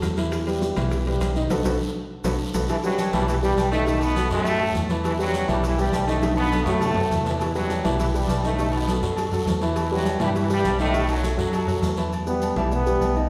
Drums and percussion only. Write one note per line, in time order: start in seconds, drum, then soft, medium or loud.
0.02 high bongo soft
0.02 low bongo medium
0.02 high conga medium
0.02 high timbale medium
0.02 short guiro medium
0.02 maracas medium
0.17 high bongo soft
0.17 high conga medium
0.17 high timbale medium
0.17 short guiro medium
0.17 maracas soft
0.32 high bongo medium
0.32 high timbale medium
0.32 long guiro medium
0.32 maracas medium
0.47 high bongo soft
0.47 high conga soft
0.47 high timbale medium
0.47 maracas medium
0.62 high bongo medium
0.62 high conga medium
0.62 short guiro medium
0.62 maracas medium
0.76 high bongo soft
0.76 high conga loud
0.76 low conga loud
0.76 high timbale loud
0.76 short guiro medium
0.76 maracas soft
0.91 high bongo medium
0.91 high conga soft
0.91 low conga medium
0.91 long guiro medium
0.91 maracas medium
1.06 high conga soft
1.06 high timbale medium
1.20 high bongo soft
1.20 low bongo medium
1.20 high conga medium
1.20 high timbale medium
1.20 short guiro medium
1.20 maracas medium
1.35 high bongo soft
1.35 high conga soft
1.35 short guiro medium
1.35 maracas soft
1.50 low bongo loud
1.50 high conga loud
1.50 high timbale loud
1.50 long guiro loud
1.50 maracas loud
1.64 low bongo loud
1.64 high conga loud
1.64 high timbale loud
1.64 long guiro loud
1.64 maracas loud
2.24 low bongo loud
2.24 high conga loud
2.24 high timbale loud
2.24 long guiro loud
2.24 maracas loud
2.53 low bongo medium
2.53 high conga loud
2.53 high timbale loud
2.53 long guiro loud
2.53 maracas loud
2.68 cowbell loud
2.68 high conga soft
2.68 low agogo loud
2.68 long guiro medium
2.68 maracas medium
2.84 high conga soft
2.84 maracas medium
2.98 cowbell medium
2.98 high conga medium
2.98 low agogo medium
2.98 short guiro medium
2.98 maracas medium
3.13 cowbell medium
3.13 high conga loud
3.13 low conga medium
3.13 low agogo loud
3.13 short guiro medium
3.13 maracas soft
3.28 cowbell loud
3.28 high conga soft
3.28 low conga medium
3.28 long guiro medium
3.28 maracas medium
3.43 high conga soft
3.43 maracas medium
3.57 cowbell medium
3.57 high conga medium
3.57 low agogo loud
3.57 short guiro medium
3.57 maracas medium
3.72 low agogo medium
3.72 short guiro medium
3.72 maracas soft
3.87 cowbell loud
3.87 high conga soft
3.87 long guiro medium
3.87 maracas medium
4.01 cowbell medium
4.01 high conga soft
4.01 low agogo loud
4.01 maracas medium
4.16 cowbell medium
4.16 high conga medium
4.16 low agogo medium
4.16 short guiro medium
4.16 maracas medium
4.31 cowbell medium
4.31 high conga soft
4.31 short guiro medium
4.31 maracas soft
4.45 cowbell loud
4.45 high conga soft
4.45 low agogo loud
4.45 long guiro medium
4.45 maracas medium
4.61 high conga soft
4.61 low agogo medium
4.74 cowbell medium
4.74 high conga medium
4.74 short guiro medium
4.74 maracas medium
4.89 cowbell medium
4.89 high conga medium
4.89 low agogo medium
4.89 short guiro medium
4.89 maracas soft
5.04 cowbell loud
5.04 high conga soft
5.04 low agogo loud
5.04 long guiro medium
5.04 maracas medium
5.19 high conga soft
5.19 maracas medium
5.34 cowbell medium
5.34 high conga medium
5.34 low agogo medium
5.34 short guiro medium
5.34 maracas medium
5.48 cowbell medium
5.48 high conga loud
5.48 low conga medium
5.48 low agogo loud
5.48 short guiro medium
5.48 maracas soft
5.63 cowbell loud
5.63 high conga soft
5.63 long guiro medium
5.63 maracas medium
5.79 maracas medium
5.92 cowbell medium
5.92 high conga medium
5.92 low timbale medium
5.92 low agogo loud
5.92 short guiro medium
5.92 maracas medium
6.08 high conga soft
6.08 low agogo medium
6.08 short guiro medium
6.08 maracas soft
6.22 cowbell loud
6.22 high conga medium
6.22 high timbale medium
6.22 long guiro medium
6.22 maracas medium
6.32 high conga medium
6.37 cowbell medium
6.37 high timbale loud
6.37 low agogo loud
6.42 high conga medium
6.52 cowbell medium
6.52 high timbale loud
6.52 low agogo medium
6.52 short guiro medium
6.52 maracas medium
6.66 cowbell medium
6.66 low timbale loud
6.66 short guiro medium
6.66 maracas soft
6.80 cowbell loud
6.80 low conga loud
6.80 low agogo loud
6.80 long guiro medium
6.80 maracas medium
6.91 low conga medium
6.95 low timbale loud
6.95 low agogo medium
7.11 cowbell medium
7.11 low conga medium
7.11 short guiro medium
7.11 maracas medium
7.21 low conga medium
7.25 cowbell medium
7.25 low timbale medium
7.25 low agogo medium
7.25 short guiro medium
7.25 maracas soft
7.31 low conga medium
7.39 cowbell loud
7.39 high conga soft
7.39 low agogo loud
7.39 long guiro medium
7.39 maracas medium
7.55 high conga soft
7.55 maracas medium
7.69 cowbell medium
7.69 high conga medium
7.69 low agogo medium
7.69 short guiro medium
7.69 maracas medium
7.84 cowbell medium
7.84 high conga loud
7.84 low conga medium
7.84 low agogo loud
7.84 short guiro medium
7.84 maracas soft
7.99 cowbell loud
7.99 high conga soft
7.99 low conga medium
7.99 long guiro medium
7.99 maracas medium
8.14 high conga soft
8.14 maracas medium
8.28 cowbell medium
8.28 high conga loud
8.28 low agogo loud
8.28 short guiro medium
8.28 maracas medium
8.42 high conga soft
8.42 low agogo medium
8.42 short guiro medium
8.42 maracas soft
8.58 cowbell loud
8.58 high conga soft
8.58 long guiro medium
8.58 maracas medium
8.72 cowbell medium
8.72 high conga soft
8.72 low agogo loud
8.87 cowbell medium
8.87 high conga loud
8.87 low agogo medium
8.87 short guiro medium
8.87 maracas medium
9.02 cowbell medium
9.02 high conga soft
9.02 short guiro medium
9.02 maracas soft
9.17 cowbell loud
9.17 high conga soft
9.17 low agogo loud
9.17 long guiro medium
9.17 maracas medium
9.31 high conga soft
9.31 low agogo medium
9.31 maracas medium
9.46 cowbell medium
9.46 high conga medium
9.46 low timbale medium
9.46 short guiro medium
9.46 maracas medium
9.61 cowbell medium
9.61 high conga medium
9.61 low agogo medium
9.61 short guiro medium
9.61 maracas soft
9.76 cowbell loud
9.76 high conga soft
9.76 low agogo loud
9.76 long guiro medium
9.76 maracas medium
9.91 high conga soft
10.05 cowbell medium
10.05 high conga medium
10.05 low agogo medium
10.05 short guiro medium
10.05 maracas medium
10.20 cowbell medium
10.20 high conga loud
10.20 low conga medium
10.20 low agogo loud
10.20 short guiro medium
10.20 maracas soft
10.35 cowbell loud
10.35 high conga soft
10.35 long guiro medium
10.35 maracas medium
10.50 high conga soft
10.50 maracas medium
10.64 cowbell medium
10.64 high conga medium
10.64 low timbale medium
10.64 low agogo loud
10.64 short guiro medium
10.64 maracas medium
10.79 high conga soft
10.79 low agogo medium
10.79 short guiro medium
10.79 maracas soft
10.94 cowbell loud
10.94 high conga soft
10.94 long guiro medium
10.94 maracas medium
11.09 cowbell medium
11.09 high conga soft
11.09 low agogo loud
11.09 maracas medium
11.23 cowbell medium
11.23 high conga medium
11.23 low agogo medium
11.23 short guiro medium
11.23 maracas medium
11.38 cowbell medium
11.38 high conga soft
11.38 short guiro medium
11.38 maracas soft
11.53 cowbell loud
11.53 high conga soft
11.53 low agogo loud
11.53 long guiro medium
11.53 maracas medium
11.68 high conga soft
11.68 low agogo medium
11.68 maracas medium
11.83 cowbell medium
11.83 high conga medium
11.83 low timbale medium
11.83 short guiro medium
11.83 maracas medium
11.97 cowbell medium
11.97 high conga medium
11.97 low agogo medium
11.97 short guiro medium
11.97 maracas soft
12.13 high conga soft
12.13 low agogo loud
12.13 maracas medium
12.27 maracas medium
12.42 high conga medium
12.42 low agogo medium
12.42 maracas medium
12.56 high conga loud
12.56 low conga medium
12.56 low agogo loud
12.56 maracas soft
12.71 high conga soft
12.71 low conga medium
12.71 maracas medium
12.86 maracas medium
13.01 high conga medium
13.01 low timbale medium
13.01 low agogo loud
13.01 maracas medium
13.15 high conga soft
13.15 low agogo medium
13.15 maracas soft